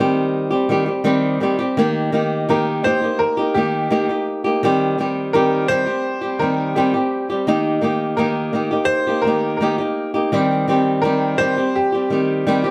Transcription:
Already playing: D#3
0.00 G3 C4 G4
0.51 G3 C4 G4
0.69 D#3 G3 C4 G4
0.86 G3 C4 G4
1.04 D#3 G3 C4 G4
1.40 D#3 G3 C4 G4
1.59 G3 C4 G4
1.77 D#3 A#3 D#4 G4
2.12 D#3 A#3 D#4 G4
2.49 D#3 A#3 D#4 G4 A#4
2.84 D#3 A#3 D#4 G4 C5
3.02 A#3 D#4 G4
3.19 A#4
3.37 A#3 D#4 G4
3.54 D#3 A#3 D#4 G4
3.90 D#3 A#3 D#4 G4
4.09 A#3 D#4 G4
4.44 A#3 D#4 G4
4.63 D#3 G3 C4 G4
4.98 D#3 G3 C4 G4
5.33 D#3 G3 C4 G4 A#4
5.68 D#3 G3 C4 G4 C5
5.86 G3 C4 G4
6.21 G3 C4 G4
6.39 D#3 G3 C4 G4 A#4
6.75 D#3 G3 C4 G4
6.94 G3 C4 G4
7.30 G3 C4 G4
7.47 D#3 A#3 D#4 G4
7.81 D#3 A#3 D#4 G4
8.17 D#3 A#3 D#4 G4 A#4
8.53 D#3 A#3 D#4 G4
8.71 A#3 D#4 G4
8.85 C5
9.07 A#3 D#4 G4
9.22 D#3 A#4
9.26 A#3 D#4 G4
9.57 D#3 A#4
9.62 A#3 D#4 G4
9.78 A#3 D#4 G4
10.14 A#3 D#4 G4
10.32 D#3 G3 C4 G4
10.68 D#3 G3 C4 G4
11.02 D#3 G3 C4 G4 A#4
11.38 D#3 G3 C4 G4 C5
11.57 G3 C4 G4
11.76 G4
11.92 G3 C4 G4
12.10 D#3 G3 C4 G4
12.47 D#3 G3 C4 G4
12.64 G3 C4 G4

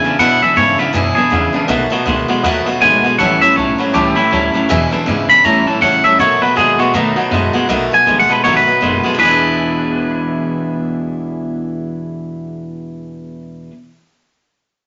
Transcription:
Already playing: G#5
0.04 E2 C#3 E3 G#3 D4 E4 B4 E5 G#5
0.19 E2 B2 E3 G#3 D4 E4 B4 E5 F#5 B5
0.41 E2 B2 E3 G#3 D4 E4 B4 E5 G#5, muted upright bass stroke
0.56 E2 G#2 C#3 E3 G#3 D4 E4 B4 C#5 E5 G#5
0.78 E2 C#3 E3 G#3 D4 E4 B4 E5 F#5, muted upright bass stroke
0.93 E2 F#2 B2 E3 G#3 D4 E4 G#4 B4 E5 G#5
1.15 E2 B2 E3 G#3 D4 E4 G#4 B4 E5 G#5
1.30 E2 C#3 E3 G#3 D4 E4 B4 E5 F#5
1.53 E2 C#3 E3 G#3 D4 E4 B4 E5 B5
1.67 B1 B2 D#3 F#3 A3 B3 F#4 B4 D#5 F#5
1.90 B2 F#3 A3 B3 F#4 B4 D#5 F#5, muted upright bass stroke
2.05 C#2 B2 D#3 G#3 A3 B3 F#4 B4 D#5 F#5
2.28 B2 G#3 A3 B3 F#4 B4 D#5 F#5, muted upright bass stroke
2.43 D#2 B2 D#3 F#3 A3 B3 F#4 B4 D#5 F#5
2.65 B2 F#3 B3 F#4 B4 D#5 F#5, muted upright bass stroke
2.69 A3
2.80 G#1 B2 D#3 G#3 A3 B3 B4 D#5 F#5 G#5
2.84 F#4
3.03 B2 G#3 B3 F#4 B4 D#5 F#5, muted upright bass stroke
3.08 A3
3.18 A1 A2 E3 G3 C#4 E4 C#5 E5 F#5 A5
3.41 A2 E3 G3 C#4 E4 C#5 E5 A5, muted upright bass stroke
3.56 B1 A2 E3 F#3 G3 C#4 E4 C#5 E5 A5
3.78 A2 F#3 G3 C#4 E4 B4 C#5 E5 F#5, muted upright bass stroke
3.94 C#2 A2 E3 G3 C#4 E4 G4 C#5 E5 A5
4.15 A2 E3 G3 C#4 E4 C#5 E5 G5, muted upright bass stroke
4.31 D2 A2 E3 F#3 G3 C#4 E4 C#5 E5 A5
4.53 A2 F#3 G3 C#4 E4 C#5 E5 A5
4.69 E2 B2 E3 G#3 D4 E4 B4 E5 G#5
4.91 E2 B2 E3 G#3 D4 E4 B4 E5 G#5, muted upright bass stroke
5.06 E2 G#2 C#3 E3 G#3 D4 E4 B4 E5 G#5
5.29 E2 C#3 E3 G#3 D4 E4 B4 E5 G#5 B5, muted upright bass stroke
5.44 A2 E3 G3 C#4 E4 C#5 E5 A5 A#5
5.66 A2 E3 G3 C#4 E4 C#5 E5 A5, muted upright bass stroke
5.81 A2 C#3 E3 F#3 G3 C#4 E4 C#5 E5 F#5 A5
6.03 A2 F#3 G3 C#4 E4 C#5 E5 A5, muted upright bass stroke
6.19 B2 D#3 F#3 A3 B3 F#4 B4 C#5 D#5 F#5
6.41 B2 F#3 A3 B3 F#4 B4 D#5 F#5, muted upright bass stroke
6.56 A#2 B2 D#3 G#3 A3 B3 F#4 G#4 B4 D#5 F#5
6.79 B2 G#3 A3 B3 F#4 B4 D#5 G#5, muted upright bass stroke
6.94 A2 B2 D#3 F#3 A3 B3 D#4 F#4 B4 D#5 F#5
7.16 B2 F#3 A3 B3 F#4 B4 D#5 F#5, muted upright bass stroke
7.31 F#2 B2 D#3 G#3 A3 B3 F#4 B4 D#5 F#5
7.53 B2 G#3 A3 B3 F#4 B4 D#5 F#5
7.69 B1 B2 D#3 F#3 A3 B3 F#4 B4 D#5 F#5
7.91 A3 B3 F#4 B4 D#5 F#5 G#5
8.06 A1 B2 D#3 G#3 A3 B3 F#4 B4 D#5 G#5
8.20 F#5
8.28 B2 G#3 A3 B3 F#4 B4 D#5 A5, muted upright bass stroke
8.44 G#1 B2 D#3 F#3 A3 B3 F#4 B4 C#5 D#5 F#5
8.57 B4
8.65 A3 B3 F#4 B4 D#5 F#5, muted upright bass stroke
8.81 F#1 B2 D#3 G#3 A3 B3 F#4 B4 D#5 F#5
9.03 B2 G#3 A3 B3 F#4 B4 D#5 F#5, muted upright bass stroke
9.15 E2 E3 B4
9.19 E2 B2 E3 B3 D4 G#4 B4 E5 G#5
9.25 G#3 D4
9.31 E4

